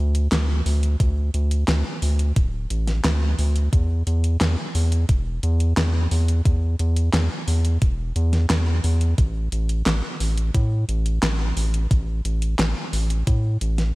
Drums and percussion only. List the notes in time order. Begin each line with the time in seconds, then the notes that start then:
0.15 closed hi-hat
0.32 snare, clap, closed hi-hat
0.66 open hi-hat
0.83 closed hi-hat
1.00 kick, closed hi-hat
1.34 closed hi-hat
1.51 closed hi-hat
1.68 snare, clap, closed hi-hat
2.02 open hi-hat
2.19 closed hi-hat
2.36 kick, closed hi-hat
2.70 closed hi-hat
2.87 snare, closed hi-hat
3.05 snare, clap, closed hi-hat
3.39 open hi-hat
3.56 closed hi-hat
3.73 kick, closed hi-hat
4.07 closed hi-hat
4.24 closed hi-hat
4.41 snare, clap, closed hi-hat
4.75 open hi-hat
4.92 closed hi-hat
5.09 kick, closed hi-hat
5.43 closed hi-hat
5.60 closed hi-hat
5.77 snare, clap, closed hi-hat
6.11 open hi-hat
6.28 closed hi-hat
6.45 kick, closed hi-hat
6.79 closed hi-hat
6.96 closed hi-hat
7.14 snare, clap, closed hi-hat
7.48 open hi-hat
7.65 closed hi-hat
7.82 kick, closed hi-hat
8.16 closed hi-hat
8.33 snare, closed hi-hat
8.50 snare, clap, closed hi-hat
8.84 open hi-hat
9.01 closed hi-hat
9.18 kick, closed hi-hat
9.52 closed hi-hat
9.69 closed hi-hat
9.86 snare, clap, closed hi-hat
10.20 open hi-hat
10.38 closed hi-hat
10.55 kick, closed hi-hat
10.89 closed hi-hat
11.06 closed hi-hat
11.23 snare, clap, closed hi-hat
11.57 open hi-hat
11.74 closed hi-hat
11.91 kick, closed hi-hat
12.25 closed hi-hat
12.42 closed hi-hat
12.59 snare, clap, closed hi-hat
12.93 open hi-hat
13.10 closed hi-hat
13.27 kick, closed hi-hat
13.61 closed hi-hat
13.78 snare, closed hi-hat